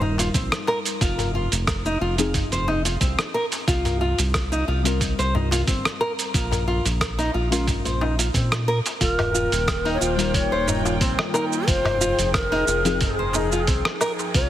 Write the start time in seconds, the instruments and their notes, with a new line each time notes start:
Already playing: analog synth bass D#1, synth keys G3 D#4 A#4
0.01 nylon-string guitar D#4, darbuka dum
0.18 nylon-string guitar F4, open hi-hat, darbuka tek, shaker
0.34 analog synth bass A#1, nylon-string guitar C4, kick, open hi-hat, shaker
0.52 cross-stick, shaker
0.67 nylon-string guitar A#4, darbuka tek
0.85 open hi-hat, shaker
1.01 analog synth bass F1, nylon-string guitar F4, kick, open hi-hat, shaker
1.19 open hi-hat, darbuka dum, shaker
1.35 nylon-string guitar F4
1.52 analog synth bass F1, open hi-hat, darbuka ka, shaker
1.67 kick, cross-stick, open hi-hat, shaker
1.86 nylon-string guitar D#4, shaker
2.01 analog synth bass F1, nylon-string guitar F4
2.18 synth keys F3 C4 D#4 G#4, nylon-string guitar F4, open hi-hat, shaker
2.34 kick, open hi-hat, darbuka dum, shaker
2.52 analog synth bass F1, nylon-string guitar C5, open hi-hat, shaker
2.68 nylon-string guitar D#4, darbuka ka, darbuka tek
2.85 nylon-string guitar F4, open hi-hat, shaker
3.01 analog synth bass C2, nylon-string guitar C4, kick, open hi-hat, shaker
3.19 cross-stick, darbuka ka, shaker
3.34 nylon-string guitar A#4
3.51 open hi-hat, darbuka ka, darbuka tek, shaker
3.68 analog synth bass C2, nylon-string guitar F4, kick, open hi-hat, shaker
3.85 open hi-hat, darbuka dum, shaker
4.01 nylon-string guitar F4
4.18 analog synth bass C2, open hi-hat, darbuka ka, darbuka tek, shaker
4.34 kick, cross-stick, open hi-hat, shaker
4.52 nylon-string guitar D#4, shaker
4.68 analog synth bass C2, nylon-string guitar F4
4.83 synth keys G3 C4 F4, nylon-string guitar F4, open hi-hat, shaker
4.87 synth keys A#4
5.00 kick, open hi-hat, darbuka tek, shaker
5.19 analog synth bass C2, nylon-string guitar C5, open hi-hat, darbuka ka, shaker
5.35 nylon-string guitar D#4, darbuka dum
5.51 nylon-string guitar F4, open hi-hat, darbuka tek, shaker
5.67 analog synth bass G1, nylon-string guitar C4, kick, open hi-hat, shaker
5.85 cross-stick, shaker
6.01 nylon-string guitar A#4, darbuka tek
6.19 open hi-hat, shaker
6.34 analog synth bass A#1, nylon-string guitar F4, kick, open hi-hat, shaker
6.52 open hi-hat, darbuka dum, shaker
6.68 nylon-string guitar F4
6.85 analog synth bass A#1, open hi-hat, darbuka ka, darbuka tek, shaker
7.01 kick, cross-stick, open hi-hat, shaker
7.19 nylon-string guitar D#4, open hi-hat, shaker
7.34 analog synth bass A#1, nylon-string guitar F4
7.51 synth keys G#3 C#4 F4 A#4, nylon-string guitar F4, open hi-hat, shaker
7.68 kick, open hi-hat, darbuka dum, shaker
7.85 analog synth bass A#1, nylon-string guitar C5, open hi-hat, shaker
8.01 nylon-string guitar D#4, darbuka ka, darbuka tek
8.19 nylon-string guitar F4, open hi-hat, shaker
8.34 analog synth bass A#2, nylon-string guitar C4, kick, open hi-hat, shaker
8.52 cross-stick, darbuka ka, shaker
8.68 nylon-string guitar A#4
8.86 open hi-hat, darbuka ka, darbuka tek, shaker
9.01 analog synth bass D#1, analog synth pad D#3 A#3 F4 G5, nylon-string guitar F4, native american-style wooden flute A4, kick, open hi-hat, shaker
9.13 native american-style wooden flute A#4
9.19 open hi-hat, darbuka dum, low woodblock
9.34 nylon-string guitar F4, shaker
9.52 analog synth bass D#1, open hi-hat, darbuka ka, darbuka tek, shaker
9.68 kick, cross-stick, open hi-hat, shaker
9.85 nylon-string guitar D#4, open hi-hat
9.94 native american-style wooden flute C#5
10.01 analog synth bass D#1, nylon-string guitar F4, native american-style wooden flute C5, shaker
10.17 synth keys G3 D#4 A#4, nylon-string guitar F4, open hi-hat, shaker
10.34 native american-style wooden flute C#5, kick, open hi-hat, darbuka tek, shaker
10.52 analog synth bass D#1, nylon-string guitar C5, darbuka ka
10.68 nylon-string guitar D#4, darbuka dum, shaker
10.85 nylon-string guitar F4, darbuka tek, shaker
11.01 analog synth bass A#1, nylon-string guitar C4, kick, open hi-hat, shaker
11.19 cross-stick, low woodblock
11.34 native american-style wooden flute D#4, nylon-string guitar A#4, darbuka tek, shaker
11.53 shaker
11.67 analog synth bass F1, analog synth pad F3 D#4 G#4, nylon-string guitar F4, native american-style wooden flute C5, kick, open hi-hat, shaker
11.85 open hi-hat, darbuka dum, low woodblock
12.01 nylon-string guitar F4, shaker
12.18 analog synth bass F1, open hi-hat, darbuka ka, shaker
12.34 native american-style wooden flute A#4, kick, cross-stick, open hi-hat, shaker
12.52 nylon-string guitar D#4, open hi-hat
12.67 analog synth bass F1, shaker
12.85 synth keys F3 C4 D#4 G#4, nylon-string guitar F4, open hi-hat, shaker
13.00 native american-style wooden flute G#4, kick, open hi-hat, darbuka dum, shaker
13.18 analog synth bass F1, nylon-string guitar C5
13.33 nylon-string guitar D#4, darbuka ka, darbuka tek, shaker
13.52 nylon-string guitar F4, shaker
13.67 analog synth bass C2, nylon-string guitar C4, kick, open hi-hat, shaker
13.85 cross-stick, darbuka ka
14.01 nylon-string guitar A#4, low woodblock, shaker
14.19 darbuka ka, darbuka tek, shaker
14.34 analog synth bass C2, analog synth pad C3 G3 F4, nylon-string guitar F4, native american-style wooden flute C5, kick, open hi-hat, shaker
14.42 native american-style wooden flute C#5